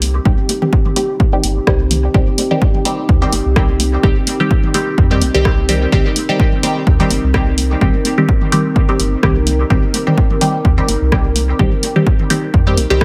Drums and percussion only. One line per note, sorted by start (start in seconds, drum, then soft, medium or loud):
0.02 open hi-hat medium
0.02 high conga soft
0.25 kick loud
0.25 high conga medium
0.49 open hi-hat medium
0.49 high conga medium
0.62 mid tom medium
0.73 kick loud
0.73 high conga soft
0.86 mid tom medium
0.96 open hi-hat medium
0.96 high conga medium
1.20 kick loud
1.20 high conga medium
1.43 open hi-hat medium
1.43 high conga soft
1.67 kick loud
1.67 cross-stick medium
1.67 high conga medium
1.91 open hi-hat medium
1.91 mid tom medium
1.91 high conga medium
2.14 kick loud
2.14 high conga soft
2.38 open hi-hat medium
2.38 high conga medium
2.51 mid tom medium
2.62 kick loud
2.62 high conga medium
2.75 mid tom medium
2.85 open hi-hat medium
2.85 high conga soft
3.09 kick loud
3.09 high conga medium
3.33 open hi-hat medium
3.33 high conga medium
3.56 kick loud
3.56 cross-stick medium
3.56 high conga soft
3.80 open hi-hat medium
3.80 high conga medium
4.03 kick loud
4.03 high conga medium
4.27 open hi-hat medium
4.27 high conga soft
4.40 mid tom medium
4.51 kick loud
4.51 high conga medium
4.64 mid tom medium
4.74 open hi-hat medium
4.74 high conga medium
4.98 kick loud
4.98 high conga soft
5.22 open hi-hat medium
5.22 high conga medium
5.45 kick loud
5.45 cross-stick medium
5.45 high conga medium
5.69 open hi-hat medium
5.69 mid tom medium
5.69 high conga soft
5.92 kick loud
5.92 high conga medium
6.16 open hi-hat medium
6.16 high conga soft
6.29 mid tom medium
6.40 kick loud
6.40 high conga medium
6.53 mid tom medium
6.63 open hi-hat medium
6.63 high conga medium
6.87 kick loud
6.87 high conga soft
7.10 open hi-hat medium
7.10 high conga medium
7.34 kick loud
7.34 cross-stick medium
7.34 high conga medium
7.58 open hi-hat medium
7.58 high conga soft
7.81 kick loud
7.81 high conga medium
8.05 open hi-hat medium
8.05 high conga medium
8.18 mid tom medium
8.29 kick loud
8.29 high conga soft
8.41 mid tom medium
8.52 open hi-hat medium
8.52 high conga medium
8.76 kick loud
8.76 high conga medium
8.99 open hi-hat medium
8.99 high conga soft
9.23 kick medium
9.23 cross-stick medium
9.23 high conga medium
9.47 open hi-hat medium
9.47 mid tom medium
9.47 high conga medium
9.70 kick loud
9.70 high conga soft
9.94 open hi-hat medium
9.94 high conga medium
10.07 mid tom medium
10.18 kick loud
10.18 high conga medium
10.31 mid tom medium
10.41 open hi-hat medium
10.41 high conga soft
10.65 kick loud
10.65 high conga medium
10.88 open hi-hat medium
10.88 high conga medium
11.12 kick medium
11.12 cross-stick medium
11.12 high conga soft
11.36 open hi-hat medium
11.36 high conga medium
11.59 kick loud
11.59 high conga medium
11.83 open hi-hat medium
11.83 high conga soft
11.96 mid tom medium
12.07 kick loud
12.07 high conga medium
12.19 mid tom medium
12.30 open hi-hat medium
12.30 high conga medium
12.54 kick loud
12.54 high conga soft
12.77 open hi-hat medium
12.77 high conga medium
13.01 kick loud
13.01 cross-stick loud
13.01 high conga medium